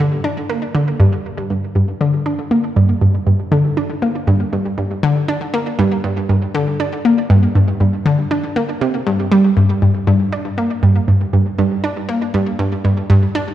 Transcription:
0.00 D3
0.24 D4
0.49 A#3
0.75 D3
1.00 G2
1.50 G2
1.75 G2
2.01 D3
2.26 D4
2.51 A#3
2.76 G2
3.01 G2
3.27 G2
3.52 D3
3.77 D4
4.02 A#3
4.27 G2
4.53 G2
4.78 G2
5.03 D3
5.28 D4
5.54 A#3
5.79 G2
6.04 G2
6.29 G2
6.55 D3
6.80 D4
7.05 A#3
7.30 G2
7.55 G2
7.80 G2
8.06 D3
8.31 D4
8.56 A#3
8.81 C3
9.07 G2
9.32 G3
9.57 G2
9.82 G2
10.07 G2
10.32 D4
10.58 A#3
10.83 G2
11.08 G2
11.33 G2
11.58 G2
11.84 D4
12.09 A#3
12.34 G2
12.59 G2
12.85 G2
13.10 G2
13.35 D4

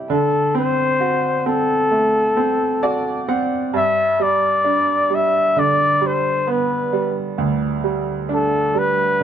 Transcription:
Already playing: G3 E4 G4
0.10 D3 A4
0.55 C4 C5
1.00 F#4
1.46 C4 A4
1.91 A3
2.37 C4
2.83 F#4 D5
3.28 C4 F#5
3.73 G2 E5
4.20 G3 D5
4.64 D4
5.10 G3
5.15 E5
5.56 D3 D5
6.01 G3
6.07 C5
6.47 B3 B4
6.93 G3
7.38 D2
7.84 G3
8.29 D4
8.34 A4
8.75 G3 B4

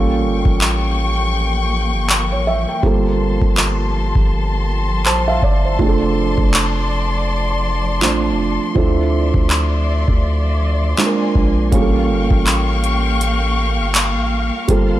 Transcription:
Already playing: A1 F3 G3 A#3 C#4 F4 A4 F5 G5 C#6
0.24 G1
0.45 A1, kick
0.61 clap
1.94 G1
2.10 clap
2.31 A1 C#5
2.47 E5
2.69 G5
2.83 G1 G3 A#3 C4 F4 A4 A5 C6, kick
3.42 G1, kick
3.57 clap
4.15 G1, kick
5.06 A#1 C5 A5, clap
5.28 E5 F5
5.43 G1 D5, kick
5.65 C5
5.79 F1 F3 A3 C4 D4 G#4 D5, kick
5.88 A4
6.38 F1, kick
6.54 clap
8.01 A1 F3 A3 C4 D4 C5, clap
8.31 F1
8.75 D2 F3 C4 D4 E4 A4 D5 E5, kick
9.34 D2, kick
9.50 clap
10.08 D2, kick
10.98 G#3 A#3 C4 D4 F4 G#4 G#5, clap
11.06 A#4
11.35 A#1, kick
11.71 A1 G3 A#3 C#4 F4 G#4 F5 G5 C#6, kick, closed hi-hat
11.81 A4
12.10 G1
12.31 A1, kick
12.47 clap, closed hi-hat
12.84 closed hi-hat
13.21 closed hi-hat
13.79 G1
13.95 clap, closed hi-hat
14.16 A1
14.68 G1 G3 A#3 C4 F4 A4 A5 C6, kick, closed hi-hat

